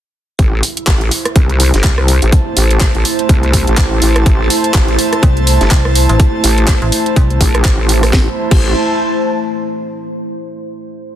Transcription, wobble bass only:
0.39 0.61 A1 loud
0.87 1.10 A1 loud
1.36 1.72 C2 loud
1.74 1.82 G1 loud
1.84 2.20 C2 medium
2.22 2.31 A1 loud
2.57 2.93 A1 loud
2.95 3.03 A1 loud
3.29 3.65 C2 loud
3.67 4.00 A1 loud
4.02 4.24 A1 loud
4.26 4.49 A1 loud
4.75 4.97 A1 loud
5.61 5.70 G1 loud
6.44 6.80 A1 medium
7.41 7.63 A#1 loud
7.65 8.12 A1 loud
8.13 8.28 A1 loud
8.51 8.74 A1 loud

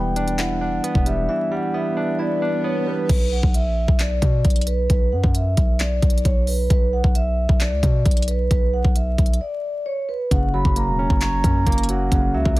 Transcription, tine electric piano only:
0.00 0.61 E3 medium
0.00 0.84 G3 medium
0.00 0.83 B3 medium
0.16 0.60 D4 loud
0.39 1.52 E4 medium
0.61 1.74 D4 medium
0.84 1.73 B3 medium
1.07 1.50 G3 medium
1.29 2.42 E3 medium
1.51 2.64 G3 medium
1.74 2.63 B3 medium
1.97 2.41 D4 loud
2.19 3.09 E4 medium
2.42 3.09 D4 medium
2.64 3.09 B3 medium
2.87 3.09 G3 medium
10.31 11.44 C#3 medium
10.54 11.67 F#3 medium
10.76 11.65 A#3 medium
10.99 11.43 C#4 medium
11.21 12.34 C#5 loud
11.44 12.57 C#4 medium
11.67 12.56 A#3 loud
11.89 12.33 F#3 medium
12.12 12.60 C#3 medium
12.34 12.60 F#3 medium

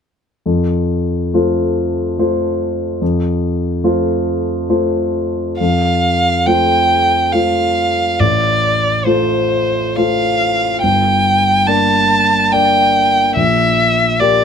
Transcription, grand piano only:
0.46 1.31 F2 soft
1.34 2.14 A3 soft
1.34 2.15 F4 soft
1.34 2.15 C5 soft
2.19 2.97 A3 soft
2.19 2.97 F4 soft
2.19 2.98 C5 soft
3.01 3.81 F2 soft
3.84 4.65 A3 soft
3.84 4.65 F4 soft
3.84 4.65 C5 soft
4.69 5.56 A3 soft
4.69 5.56 F4 soft
4.69 5.56 C5 soft
5.61 6.44 F2 soft
6.46 7.30 A3 soft
6.46 7.30 F4 soft
6.46 7.30 C5 soft
7.33 8.15 A3 soft
7.33 8.16 F4 soft
7.33 8.16 C5 soft
8.20 9.03 A1 soft
9.06 9.93 A3 soft
9.06 9.93 F4 soft
9.06 9.93 C5 soft
9.97 10.78 A3 soft
9.97 10.79 F4 soft
9.97 10.79 C5 soft
10.83 11.65 G1 soft
11.67 12.48 A#3 soft
11.67 12.49 D4 soft
11.67 12.49 D5 soft
12.53 13.32 A#3 soft
12.53 13.32 D4 soft
12.53 13.32 D5 soft
13.36 14.18 A#1 soft
14.21 14.44 A#3 soft
14.21 14.44 G4 soft
14.21 14.44 D5 soft

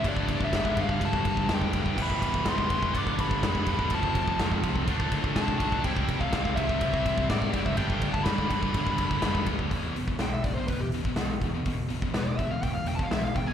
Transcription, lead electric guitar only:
0.09 0.44 D5 medium
0.44 0.80 E5 loud
0.81 1.04 F5 medium
1.05 1.53 A5 loud
1.54 2.02 G5 medium
2.02 2.48 B5 loud
2.49 2.97 C6 loud
2.98 3.20 D6 loud
3.21 3.94 B5 loud
3.95 4.38 A5 medium
5.37 5.84 A5 medium
5.85 6.22 G5 loud
6.20 6.55 F5 medium
6.55 7.29 E5 medium
7.30 7.67 D5 medium
7.66 7.77 E5 medium
7.77 8.15 G5 loud
8.13 8.24 A5 loud
8.24 9.42 B5 loud
10.21 10.32 G5 medium
10.34 10.45 E5 medium
10.43 10.54 D5 medium
10.55 10.67 C5 medium
10.68 10.80 B4 medium
10.80 10.88 G4 medium
12.14 12.27 B4 medium
12.27 12.38 D5 medium
12.38 12.50 E5 medium
12.51 12.64 F5 medium
12.64 12.74 G5 loud
12.75 12.87 F5 medium
12.88 12.96 G5 medium
12.96 13.04 A5 medium
13.03 13.11 F5 medium
13.12 13.23 E5 medium
13.25 13.36 F5 medium
13.37 13.47 G5 medium
13.47 13.53 G#5 medium

